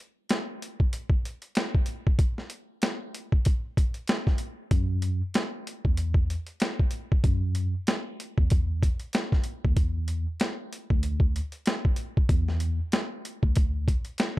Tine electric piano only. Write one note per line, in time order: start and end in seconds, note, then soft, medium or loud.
4.71 5.20 F#2 loud
5.85 6.34 E2 medium
7.24 7.73 F#2 loud
8.38 8.87 E2 medium
9.65 9.75 D#2 medium
9.77 10.26 E2 loud
10.90 11.39 D2 medium
12.29 12.78 E2 loud
13.43 13.92 D2 medium